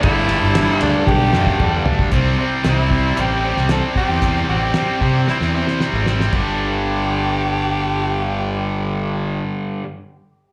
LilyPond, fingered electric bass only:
\new Staff \with { instrumentName = "Fingered electric bass" } { \clef bass \time 4/4 \key c \lydian \tempo 4 = 114 g,,8 g,,16 g,,8 r16 d,16 r16 b,,8 fis,8 e,8 d,8 | c,8 r8 c,4 a,,8. c,8 r8 e,16~ | e,8 a,,8 r8 c8 r16 e,8 r8 aes,,8. | g,,1~ |
g,,1 | }